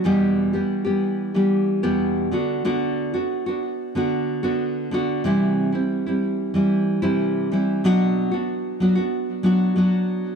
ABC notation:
X:1
M:4/4
L:1/16
Q:1/4=93
K:Bphr
V:1 name="Nylon-string guitar"
[E,,B,,E,G,B,G]3 [E,G,B,G]2 [E,G,B,G]3 [E,G,B,G]3 [E,,B,,E,G,B,G]3 [D,B,DF]2 | [D,B,DF]3 [B,DF]2 [B,DF]3 [D,B,DF]3 [D,B,DF]3 [D,B,DF]2 | [C,E,G,CE]3 [G,CE]2 [G,CE]3 [E,G,CE]3 [C,E,G,CE]3 [E,G,CE]2 | [B,,F,B,DF]3 [B,DF]3 [F,B,DF] [B,DF]3 [F,B,DF]2 [F,B,DF]4 |]